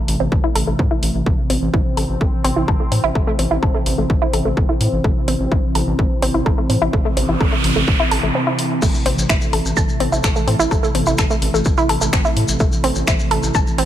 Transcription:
Already playing: analog synth pad C3 E3 A3
0.08 analog synth bass A1, open hi-hat
0.20 analog synth bass A1, synth arpeggio sound C4
0.32 analog synth bass A1, kick
0.44 synth arpeggio sound E4
0.55 analog synth bass A1, synth arpeggio sound A4, open hi-hat
0.67 analog synth bass A1, synth arpeggio sound A3
0.79 analog synth bass A2, synth arpeggio sound C4, kick
0.91 synth arpeggio sound E4
1.03 analog synth bass A1, open hi-hat
1.15 analog synth bass A1
1.26 analog synth bass A1, synth arpeggio sound A3, analog synth pad C4, kick
1.50 analog synth bass A1, synth arpeggio sound C4, open hi-hat
1.62 analog synth bass A1
1.74 analog synth bass A1, synth arpeggio sound E4, kick
1.97 analog synth bass A1, synth arpeggio sound A4, open hi-hat
2.09 analog synth bass A1
2.21 analog synth bass A1, synth arpeggio sound A3, kick
2.44 analog synth bass A1, synth arpeggio sound C4, open hi-hat
2.56 analog synth bass A1, synth arpeggio sound E4
2.68 analog synth bass A1, synth arpeggio sound A4, kick
2.80 synth arpeggio sound A3
2.92 analog synth bass A2, synth arpeggio sound C4, open hi-hat
3.04 analog synth bass A1, synth arpeggio sound E4
3.15 analog synth bass A1, synth arpeggio sound A4, kick
3.27 synth arpeggio sound A3
3.39 analog synth bass A1, synth arpeggio sound C4, open hi-hat
3.51 analog synth bass A1, synth arpeggio sound E4
3.63 analog synth bass A1, synth arpeggio sound A4, kick
3.75 synth arpeggio sound A3
3.86 analog synth bass A1, open hi-hat
3.98 analog synth bass A1, synth arpeggio sound A3
4.10 analog synth bass A1, kick
4.22 synth arpeggio sound E4
4.33 analog synth bass A1, synth arpeggio sound A4, open hi-hat
4.45 analog synth bass A1, synth arpeggio sound A3
4.57 analog synth bass A1, synth arpeggio sound C4, kick
4.69 synth arpeggio sound E4
4.81 analog synth bass A2, open hi-hat
4.93 analog synth bass A1
5.04 analog synth bass A1, synth arpeggio sound A3, kick
5.28 analog synth bass A1, synth arpeggio sound C4, open hi-hat
5.40 analog synth bass A1
5.52 analog synth bass A1, synth arpeggio sound E4, kick
5.75 analog synth bass A1, synth arpeggio sound A4, open hi-hat
5.87 analog synth bass A1
5.99 analog synth bass A1, synth arpeggio sound A3, kick
6.22 analog synth bass A1, synth arpeggio sound C4, open hi-hat
6.34 analog synth bass A1, synth arpeggio sound E4
6.46 analog synth bass A1, synth arpeggio sound A4, kick
6.58 synth arpeggio sound A3
6.70 analog synth bass A2, synth arpeggio sound C4, open hi-hat
6.82 analog synth bass A1, synth arpeggio sound E4
6.93 analog synth bass A1, synth arpeggio sound A4, kick, noise sweep
7.05 synth arpeggio sound A3
7.17 analog synth bass A1, synth arpeggio sound C4, open hi-hat
7.29 analog synth bass A1, synth arpeggio sound E4
7.41 analog synth bass A1, synth arpeggio sound A4, kick
7.52 synth arpeggio sound A3
7.64 analog synth bass A1, open hi-hat
7.76 analog synth bass A1, synth arpeggio sound A3
7.88 analog synth bass A1, kick
8.00 synth arpeggio sound E4
8.11 analog synth bass A1, synth arpeggio sound A4, open hi-hat
8.23 analog synth bass A1, synth arpeggio sound A3
8.35 synth arpeggio sound C4
8.47 synth arpeggio sound E4
8.59 open hi-hat
8.82 analog synth bass A1, synth arpeggio sound A3, analog synth pad A3, kick, crash, shekere
8.95 shekere
9.06 analog synth bass A1, synth arpeggio sound C4, open hi-hat
9.18 analog synth bass A1, shekere
9.29 analog synth bass A1, synth arpeggio sound E4, finger snap, kick, shekere
9.41 shekere
9.53 analog synth bass A1, synth arpeggio sound A4, open hi-hat
9.65 analog synth bass A1, shekere
9.77 analog synth bass A1, synth arpeggio sound A5, kick, shekere
9.89 shekere
10.00 analog synth bass A1, synth arpeggio sound C4, open hi-hat
10.12 analog synth bass A1, synth arpeggio sound E4, shekere
10.24 analog synth bass A1, synth arpeggio sound A4, finger snap, kick, shekere
10.36 synth arpeggio sound A3, shekere
10.48 analog synth bass A2, synth arpeggio sound C4, open hi-hat
10.60 analog synth bass A1, synth arpeggio sound E4, shekere
10.71 analog synth bass A1, synth arpeggio sound A4, kick, shekere
10.83 synth arpeggio sound A3, shekere
10.95 analog synth bass A1, synth arpeggio sound C4, open hi-hat
11.06 analog synth bass A1, synth arpeggio sound E4, shekere
11.18 analog synth bass A1, synth arpeggio sound A4, finger snap, kick, shekere
11.30 synth arpeggio sound A3, shekere
11.42 analog synth bass A1, open hi-hat
11.54 analog synth bass A1, synth arpeggio sound A3, shekere
11.65 analog synth bass A1, kick, shekere
11.77 synth arpeggio sound E4, shekere
11.89 analog synth bass A1, synth arpeggio sound A4, open hi-hat
12.01 analog synth bass A1, synth arpeggio sound A3, shekere
12.13 analog synth bass A1, synth arpeggio sound C4, finger snap, kick, shekere
12.25 synth arpeggio sound E4, shekere
12.36 analog synth bass A2, open hi-hat
12.48 analog synth bass A1, shekere
12.59 analog synth bass A1, synth arpeggio sound A3, kick, shekere
12.72 shekere
12.84 analog synth bass A1, synth arpeggio sound C4, open hi-hat
12.95 analog synth bass A1, shekere
13.07 analog synth bass A1, synth arpeggio sound E4, finger snap, kick, shekere
13.19 shekere
13.31 analog synth bass A1, synth arpeggio sound A4, open hi-hat
13.43 analog synth bass A1, shekere
13.55 analog synth bass A1, synth arpeggio sound A5, kick, shekere
13.67 shekere
13.78 analog synth bass A1, synth arpeggio sound C4, open hi-hat

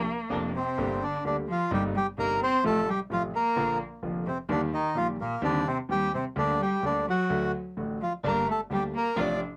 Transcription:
Already playing: cello A#3
0.30 grand piano F1 F2 C3 F3 A#3 D4, string section A#3 C4 D4
0.55 cello C3, bandoneon C4
0.78 grand piano G1 G2 D3 G3 A#3 G4
1.01 cello D3, bandoneon D4
1.25 grand piano D2 D3 G3 A#3 G4, cello D3, bandoneon D4
1.48 cello F3, bandoneon F4
1.71 grand piano G1 G2 C3 G3 A#3 D#4, cello G3, bandoneon G4
1.95 cello G3, bandoneon G4
2.18 grand piano G1 G2 C3 G3 A#3 D#4, cello A#3, bandoneon A#4
2.42 cello C4, bandoneon C5
2.64 grand piano A1 A2 C3 F3 A3 F4, cello A3, bandoneon A4
2.88 cello G3, bandoneon G4
3.10 grand piano A1 A2 C3 F3 A3 F4, cello F3, bandoneon F4
3.35 cello A#3, bandoneon A#4
3.56 grand piano A#1 A#2 D3 F3 A#3 F4
4.03 grand piano F1 F2 D3 F3 A#3 F4
4.26 cello C3, bandoneon C4
4.49 grand piano D#2 D#3 G3 A#3 G4, cello D3, bandoneon D4
4.73 cello D#3, bandoneon D#4
4.95 grand piano A#1 A#2 D#3 G3 A#3 G4, cello F3, bandoneon F4
5.20 cello A#2, bandoneon A#3
5.42 grand piano D#2 D#3 G3 C4 G4, cello D3, bandoneon D4
5.67 cello C3, bandoneon C4
5.89 grand piano D#2 D#3 G3 C4 G4, cello G3, bandoneon G4
6.14 cello C3, bandoneon C4
6.36 grand piano D2 D3 G3 A#3 G4, cello D3, bandoneon D4
6.60 cello G3, bandoneon G4
6.82 grand piano D2 D3 G3 A#3 G4, cello D3, bandoneon D4
7.07 cello F#3, bandoneon F#4
7.30 grand piano D2 D3 F#3 A3 F#4
7.77 grand piano A1 A2 D3 F#3 A3 F#4
8.01 cello F3, bandoneon F4
8.24 grand piano G1 G2 D3 G3 A#3 G4, string section G3 A#3 D4, cello A#3
8.28 bandoneon A#4
8.47 cello A3, bandoneon A4
8.70 grand piano D2 D3 G3 A#3 G4, string section G3 A#3 D4, cello G3
8.74 bandoneon G4
8.94 cello A#3, bandoneon A#4
9.16 grand piano A1 A2 C3 F3 A3 F4, string section A3 C4 F4, cello D4, bandoneon D5

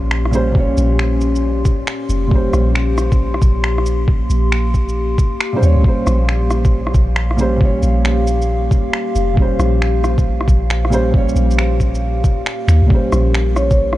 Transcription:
Already playing: 808-style bass A#1, felt piano A#2 G3 C#4 C5, ambient pad A#3 C#4 G4 C6
0.11 finger snap
0.25 cross-stick
0.31 felt piano A#2 G3 C#4 C5, shaker
0.51 felt piano A#2 G3, kick
0.56 felt piano C#4 C#5
0.77 808-style bass A#1, shaker
0.99 finger snap
1.21 shaker
1.36 shaker
1.65 kick, shaker
1.87 finger snap
2.09 808-style bass F1, shaker
2.27 felt piano A#2 G3
2.31 felt piano C#4 C5, kick
2.53 808-style bass A#1, cross-stick, shaker
2.75 finger snap
2.98 cross-stick, shaker
3.12 kick, shaker
3.34 cross-stick
3.42 808-style bass A#1, kick, shaker
3.64 finger snap
3.78 cross-stick
3.86 shaker
4.08 kick
4.30 808-style bass A#1, shaker
4.52 finger snap
4.74 kick, shaker
4.89 shaker
5.18 kick, shaker
5.41 finger snap
5.53 felt piano A#2 G3 C#4 C5
5.60 808-style bass D#2, felt piano A#2 G3 C#4, shaker
5.64 felt piano C#5
5.76 808-style bass C#2, felt piano A#2
5.83 felt piano G3 C#4, ambient pad F5, kick
5.88 felt piano C5
6.07 808-style bass A#1, cross-stick, shaker
6.29 finger snap
6.51 cross-stick, shaker
6.65 kick, shaker
6.87 cross-stick
6.94 808-style bass A#1, kick, shaker
7.16 finger snap
7.31 cross-stick
7.37 felt piano A#2 G3 C#4, shaker
7.41 felt piano C5
7.57 felt piano A#2 G3, kick
7.62 felt piano C#4 C#5
7.83 808-style bass A#1, shaker
8.05 finger snap
8.27 shaker
8.42 shaker
8.71 kick, shaker
8.93 finger snap
9.15 808-style bass F1, shaker
9.34 felt piano A#2 G3, kick
9.39 felt piano C#4 C5
9.59 808-style bass A#1, cross-stick, shaker
9.82 finger snap
10.04 cross-stick, shaker
10.18 kick, shaker
10.41 cross-stick
10.48 808-style bass A#1, kick, shaker
10.70 finger snap
10.85 cross-stick
10.90 felt piano A#2 G3 C#4 C5, shaker
11.10 felt piano A#2 G3
11.14 felt piano C#4 C#5, kick
11.29 shaker
11.35 808-style bass A#1, shaker
11.51 shaker
11.58 finger snap
11.80 kick, shaker
11.95 shaker
12.24 kick, shaker
12.46 finger snap
12.68 808-style bass D#2, finger snap, shaker
12.82 808-style bass C#2
12.86 felt piano A#2 G3, kick
12.91 ambient pad C#4 A#4, felt piano C#4 C5
13.12 808-style bass A#1, cross-stick, shaker
13.34 finger snap
13.56 marimba C#5, cross-stick, shaker
13.70 marimba C#5, kick, shaker
13.93 cross-stick

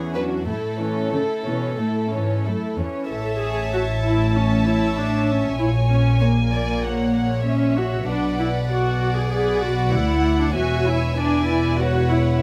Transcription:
Already playing: cello section E2, viola section E3 B3, violin section C#4 G#4
0.14 viola section F#3 C#4, violin section D4 F#4 B4
0.46 cello section A2, viola section A3, violin section E4 A4
0.79 viola section E3 C#4, violin section C#4 C#5
1.12 cello section C#3, viola section A3, violin section E4 A4
1.46 cello section B2, viola section E3 C#4, violin section C#4 C#5
1.79 cello section A2, viola section A3, violin section E4 A4
2.12 cello section G#2, viola section E3 C#4, violin section C#4 C#5
2.45 cello section F#2, viola section A3, violin section E4 A4
2.78 cello section E2, viola section E3 C#4, violin section C#4 C#5
3.09 double bass section A1, cello section A2, viola section A4, violin section C#5 E5 A5
3.42 viola section G#4
3.73 viola section F#4
4.05 viola section E4
4.35 viola section C#4, violin section C#5 E5
4.67 viola section E4
4.97 viola section D4
5.28 viola section C#4
5.59 double bass section A#1, cello section A#2, viola section E4, violin section C#5 G#5
5.90 viola section C#4
6.21 viola section A#3, violin section C#5
6.52 violin section D5
6.84 violin section C#5 F#5
7.15 violin section F#5
7.46 viola section C#4, violin section E5
7.77 viola section F#4
8.08 double bass section B1, cello section B2, viola section D4, violin section B4 D5 F#5
8.40 viola section E4
8.70 viola section F#4, violin section D5 F#5
9.17 viola section G#4
9.31 viola section G#4, violin section B4 F#5
9.63 viola section F#4
9.93 double bass section D2, cello section D2, viola section E4, violin section F#5
10.42 viola section D4
10.55 double bass section E1, cello section E2, viola section F#4, violin section C#5 E5 G#5
10.88 viola section E4
11.18 viola section D4, violin section B4 D5 G#5
11.48 viola section E4
11.79 viola section F#4, violin section B4 C#5 F#5
12.10 viola section E4

